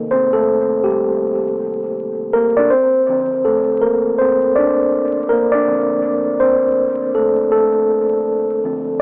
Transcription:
0, 0, Header, 1, 2, 480
1, 0, Start_track
1, 0, Key_signature, -1, "minor"
1, 0, Tempo, 740741
1, 1750, Time_signature, 4, 2, 24, 8
1, 5844, End_track
2, 0, Start_track
2, 0, Title_t, "Tine electric piano"
2, 0, Program_c, 0, 4
2, 0, Control_c, 0, 64, 127
2, 0, Note_on_c, 0, 48, 55
2, 0, Note_on_c, 0, 51, 52
2, 0, Note_on_c, 0, 58, 60
2, 71, Note_on_c, 0, 72, 95
2, 85, Note_on_c, 0, 60, 79
2, 174, Note_off_c, 0, 48, 0
2, 177, Note_off_c, 0, 51, 0
2, 179, Note_off_c, 0, 58, 0
2, 214, Note_on_c, 0, 69, 90
2, 216, Note_off_c, 0, 60, 0
2, 223, Note_off_c, 0, 72, 0
2, 232, Note_on_c, 0, 57, 72
2, 534, Note_off_c, 0, 57, 0
2, 543, Note_on_c, 0, 67, 78
2, 558, Note_off_c, 0, 69, 0
2, 569, Note_on_c, 0, 55, 58
2, 1241, Note_off_c, 0, 67, 0
2, 1254, Note_off_c, 0, 55, 0
2, 1513, Note_on_c, 0, 70, 98
2, 1527, Note_on_c, 0, 58, 69
2, 1649, Note_off_c, 0, 70, 0
2, 1657, Note_off_c, 0, 58, 0
2, 1664, Note_on_c, 0, 74, 98
2, 1677, Note_on_c, 0, 62, 74
2, 1751, Note_on_c, 0, 72, 93
2, 1754, Note_off_c, 0, 62, 0
2, 1755, Note_off_c, 0, 74, 0
2, 1757, Control_c, 0, 64, 0
2, 1768, Note_on_c, 0, 60, 74
2, 1890, Control_c, 0, 64, 127
2, 1999, Note_on_c, 0, 50, 49
2, 2000, Note_off_c, 0, 60, 0
2, 2003, Note_on_c, 0, 53, 47
2, 2008, Note_on_c, 0, 60, 62
2, 2234, Note_on_c, 0, 69, 78
2, 2245, Note_off_c, 0, 72, 0
2, 2251, Note_on_c, 0, 57, 69
2, 2464, Note_off_c, 0, 57, 0
2, 2471, Note_on_c, 0, 70, 79
2, 2479, Note_off_c, 0, 69, 0
2, 2489, Note_on_c, 0, 58, 61
2, 2694, Note_off_c, 0, 70, 0
2, 2703, Note_off_c, 0, 58, 0
2, 2712, Note_on_c, 0, 72, 89
2, 2722, Note_off_c, 0, 60, 0
2, 2729, Note_on_c, 0, 60, 69
2, 2944, Note_off_c, 0, 60, 0
2, 2952, Note_on_c, 0, 74, 94
2, 2958, Note_off_c, 0, 72, 0
2, 2970, Note_on_c, 0, 62, 71
2, 3405, Note_off_c, 0, 74, 0
2, 3414, Note_off_c, 0, 62, 0
2, 3430, Note_on_c, 0, 70, 90
2, 3450, Note_on_c, 0, 58, 73
2, 3497, Note_off_c, 0, 70, 0
2, 3512, Note_off_c, 0, 58, 0
2, 3577, Note_on_c, 0, 74, 92
2, 3596, Note_on_c, 0, 62, 76
2, 3669, Note_off_c, 0, 50, 0
2, 3674, Note_off_c, 0, 53, 0
2, 3677, Note_on_c, 0, 50, 53
2, 3682, Note_on_c, 0, 53, 48
2, 3686, Note_on_c, 0, 60, 60
2, 4133, Note_off_c, 0, 62, 0
2, 4148, Note_on_c, 0, 72, 87
2, 4161, Note_off_c, 0, 60, 0
2, 4167, Note_off_c, 0, 74, 0
2, 4169, Note_on_c, 0, 60, 64
2, 4367, Note_off_c, 0, 50, 0
2, 4370, Note_off_c, 0, 53, 0
2, 4614, Note_off_c, 0, 60, 0
2, 4633, Note_on_c, 0, 69, 78
2, 4643, Note_off_c, 0, 72, 0
2, 4649, Note_on_c, 0, 57, 61
2, 4863, Note_off_c, 0, 57, 0
2, 4864, Note_off_c, 0, 69, 0
2, 4872, Note_on_c, 0, 69, 75
2, 4889, Note_on_c, 0, 57, 55
2, 5325, Note_off_c, 0, 69, 0
2, 5334, Note_off_c, 0, 57, 0
2, 5598, Note_on_c, 0, 50, 59
2, 5603, Note_on_c, 0, 53, 53
2, 5607, Note_on_c, 0, 60, 61
2, 5844, Note_off_c, 0, 50, 0
2, 5844, Note_off_c, 0, 53, 0
2, 5844, Note_off_c, 0, 60, 0
2, 5844, End_track
0, 0, End_of_file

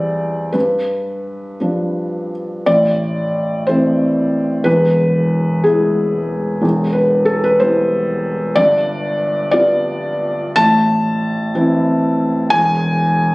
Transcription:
0, 0, Header, 1, 2, 480
1, 0, Start_track
1, 0, Key_signature, 0, "minor"
1, 0, Tempo, 698487
1, 376, Time_signature, 6, 3, 24, 8
1, 2295, Tempo, 662252
1, 4215, Tempo, 645161
1, 6615, Tempo, 677201
1, 7575, Tempo, 650759
1, 9626, End_track
2, 0, Start_track
2, 0, Title_t, "Felt piano"
2, 0, Program_c, 0, 0
2, 0, Control_c, 0, 64, 127
2, 0, Note_on_c, 0, 40, 62
2, 0, Note_on_c, 0, 52, 36
2, 0, Note_on_c, 0, 55, 37
2, 0, Note_on_c, 0, 64, 40
2, 0, Note_on_c, 0, 72, 57
2, 0, Note_on_c, 0, 74, 99
2, 348, Note_off_c, 0, 52, 0
2, 348, Note_off_c, 0, 55, 0
2, 349, Note_off_c, 0, 64, 0
2, 361, Note_on_c, 0, 71, 62
2, 369, Note_off_c, 0, 72, 0
2, 369, Note_on_c, 0, 43, 49
2, 390, Note_off_c, 0, 74, 0
2, 390, Control_c, 0, 64, 0
2, 397, Note_off_c, 0, 40, 0
2, 528, Control_c, 0, 64, 127
2, 1078, Note_off_c, 0, 43, 0
2, 1102, Note_on_c, 0, 53, 32
2, 1107, Note_on_c, 0, 62, 36
2, 1109, Note_on_c, 0, 55, 32
2, 1582, Note_off_c, 0, 71, 0
2, 1802, Note_off_c, 0, 53, 0
2, 1804, Note_off_c, 0, 62, 0
2, 1805, Note_off_c, 0, 55, 0
2, 1830, Note_on_c, 0, 74, 88
2, 1833, Note_on_c, 0, 33, 58
2, 1838, Note_on_c, 0, 45, 60
2, 1844, Control_c, 0, 64, 0
2, 1942, Control_c, 0, 64, 127
2, 2516, Note_off_c, 0, 33, 0
2, 2518, Note_off_c, 0, 45, 0
2, 2532, Note_on_c, 0, 72, 71
2, 2536, Note_off_c, 0, 74, 0
2, 2548, Note_on_c, 0, 52, 38
2, 2549, Note_on_c, 0, 57, 42
2, 2550, Note_on_c, 0, 60, 45
2, 3228, Note_off_c, 0, 52, 0
2, 3228, Note_off_c, 0, 57, 0
2, 3229, Note_off_c, 0, 60, 0
2, 3238, Note_on_c, 0, 28, 54
2, 3238, Note_on_c, 0, 71, 91
2, 3248, Note_on_c, 0, 40, 59
2, 3249, Note_off_c, 0, 72, 0
2, 3264, Control_c, 0, 64, 0
2, 3374, Control_c, 0, 64, 127
2, 3946, Note_off_c, 0, 28, 0
2, 3951, Note_off_c, 0, 40, 0
2, 3960, Note_on_c, 0, 68, 69
2, 3967, Note_off_c, 0, 71, 0
2, 3972, Note_on_c, 0, 56, 44
2, 3979, Note_on_c, 0, 59, 45
2, 3979, Note_on_c, 0, 64, 44
2, 4665, Note_off_c, 0, 56, 0
2, 4668, Note_off_c, 0, 59, 0
2, 4668, Note_off_c, 0, 64, 0
2, 4680, Note_on_c, 0, 28, 57
2, 4687, Note_on_c, 0, 40, 59
2, 4688, Note_off_c, 0, 68, 0
2, 4709, Control_c, 0, 64, 0
2, 4834, Control_c, 0, 64, 127
2, 4912, Note_on_c, 0, 71, 70
2, 5156, Note_on_c, 0, 69, 76
2, 5163, Note_off_c, 0, 71, 0
2, 5286, Note_off_c, 0, 69, 0
2, 5293, Note_on_c, 0, 71, 80
2, 5385, Note_off_c, 0, 28, 0
2, 5389, Note_off_c, 0, 40, 0
2, 5412, Note_on_c, 0, 72, 85
2, 5414, Note_off_c, 0, 71, 0
2, 5423, Note_on_c, 0, 55, 50
2, 5428, Note_on_c, 0, 59, 47
2, 5432, Note_on_c, 0, 64, 46
2, 6109, Note_off_c, 0, 55, 0
2, 6111, Note_off_c, 0, 59, 0
2, 6114, Note_off_c, 0, 64, 0
2, 6125, Note_on_c, 0, 74, 106
2, 6130, Note_on_c, 0, 31, 67
2, 6133, Note_off_c, 0, 72, 0
2, 6140, Note_on_c, 0, 43, 70
2, 6146, Control_c, 0, 64, 0
2, 6266, Control_c, 0, 64, 127
2, 6816, Note_off_c, 0, 74, 0
2, 6818, Note_off_c, 0, 31, 0
2, 6823, Note_off_c, 0, 43, 0
2, 6827, Note_on_c, 0, 74, 95
2, 6841, Note_on_c, 0, 59, 49
2, 6842, Note_on_c, 0, 55, 45
2, 6843, Note_on_c, 0, 65, 56
2, 7546, Note_off_c, 0, 55, 0
2, 7546, Note_off_c, 0, 59, 0
2, 7546, Note_off_c, 0, 65, 0
2, 7567, Note_off_c, 0, 74, 0
2, 7567, Note_on_c, 0, 81, 126
2, 7572, Note_on_c, 0, 33, 66
2, 7580, Note_on_c, 0, 45, 72
2, 7586, Control_c, 0, 64, 0
2, 7715, Control_c, 0, 64, 127
2, 8269, Note_off_c, 0, 33, 0
2, 8274, Note_off_c, 0, 45, 0
2, 8298, Note_on_c, 0, 52, 55
2, 8298, Note_on_c, 0, 60, 57
2, 8303, Note_on_c, 0, 64, 55
2, 8986, Note_off_c, 0, 52, 0
2, 8986, Note_off_c, 0, 60, 0
2, 8988, Note_off_c, 0, 64, 0
2, 9001, Note_on_c, 0, 80, 122
2, 9003, Note_on_c, 0, 28, 72
2, 9009, Note_off_c, 0, 81, 0
2, 9009, Note_on_c, 0, 40, 78
2, 9026, Control_c, 0, 64, 0
2, 9155, Control_c, 0, 64, 127
2, 9626, Note_off_c, 0, 28, 0
2, 9626, Note_off_c, 0, 40, 0
2, 9626, Note_off_c, 0, 80, 0
2, 9626, End_track
0, 0, End_of_file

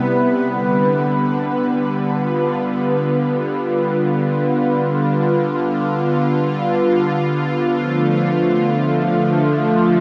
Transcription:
0, 0, Header, 1, 2, 480
1, 0, Start_track
1, 0, Tempo, 500000
1, 9604, End_track
2, 0, Start_track
2, 0, Title_t, "Analog synth pad"
2, 0, Program_c, 0, 89
2, 0, Note_on_c, 0, 48, 79
2, 0, Note_on_c, 0, 55, 66
2, 0, Note_on_c, 0, 59, 81
2, 0, Note_on_c, 0, 64, 81
2, 0, Note_on_c, 0, 71, 72
2, 473, Note_off_c, 0, 48, 0
2, 483, Note_on_c, 0, 50, 69
2, 489, Note_off_c, 0, 64, 0
2, 2046, Note_on_c, 0, 65, 72
2, 7009, Note_off_c, 0, 55, 0
2, 7323, Note_on_c, 0, 53, 69
2, 7445, Note_on_c, 0, 57, 88
2, 7982, Note_off_c, 0, 71, 0
2, 8585, Note_off_c, 0, 59, 0
2, 9604, Note_off_c, 0, 50, 0
2, 9604, Note_off_c, 0, 53, 0
2, 9604, Note_off_c, 0, 57, 0
2, 9604, Note_off_c, 0, 65, 0
2, 9604, End_track
0, 0, End_of_file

